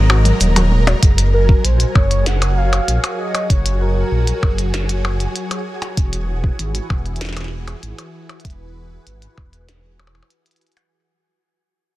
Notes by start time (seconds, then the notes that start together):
Already playing: G#1 G#3 G#4 A#4 C5 D#5 A#5
0.10 F#4, percussion blips
0.25 F#3, closed hi-hat
0.41 D#1 F#3, closed hi-hat, shaker
0.56 F#3, closed hi-hat, percussion blips
0.72 F#3
0.87 F#4, closed hi-hat, percussion blips
1.03 F#1 F#3 F#4 G#5, kick, closed hi-hat
1.18 F#4, closed hi-hat
1.34 A#4
1.49 kick
1.64 A#1 C5, closed hi-hat
1.80 closed hi-hat
1.87 G#4
1.95 F#1 C#5, kick, percussion blips
2.11 closed hi-hat
2.17 C#5
2.26 F#5, snare, closed hi-hat
2.42 closed hi-hat, percussion blips
2.57 F5
2.73 closed hi-hat, percussion blips
2.88 A#1, closed hi-hat
3.04 closed hi-hat, percussion blips
3.19 D#5
3.35 closed hi-hat, percussion blips
3.50 F#1 C#5, kick, closed hi-hat
3.66 closed hi-hat
3.81 A#4
4.12 A#1
4.27 closed hi-hat
4.43 F#1, kick, percussion blips
4.58 closed hi-hat
4.74 snare, closed hi-hat
4.89 closed hi-hat
5.05 percussion blips
5.20 closed hi-hat
5.36 closed hi-hat
5.51 closed hi-hat, percussion blips
5.82 closed hi-hat, percussion blips
5.97 E1 E3, kick, closed hi-hat
6.13 closed hi-hat
6.24 E4
6.44 kick
6.59 G#1, closed hi-hat
6.75 closed hi-hat
6.90 E1, kick, percussion blips
7.06 closed hi-hat
7.16 closed hi-hat
7.21 snare, closed hi-hat
7.25 snare, closed hi-hat
7.29 snare
7.33 snare
7.37 snare, closed hi-hat, percussion blips
7.40 snare
7.44 snare
7.48 snare
7.68 closed hi-hat, percussion blips
7.83 G#1, closed hi-hat
7.99 closed hi-hat, percussion blips
8.20 B4
8.29 closed hi-hat, percussion blips
8.40 closed hi-hat
8.45 E1, kick, closed hi-hat
8.50 closed hi-hat
9.07 G#1, closed hi-hat
9.22 closed hi-hat
9.38 E1, kick, percussion blips
9.53 closed hi-hat
9.69 snare, closed hi-hat
9.99 percussion blips
10.07 percussion blips
10.15 percussion blips
10.23 percussion blips
10.30 closed hi-hat
10.46 closed hi-hat
10.51 closed hi-hat
10.56 closed hi-hat
10.61 closed hi-hat
10.67 closed hi-hat
10.72 closed hi-hat
10.77 closed hi-hat, percussion blips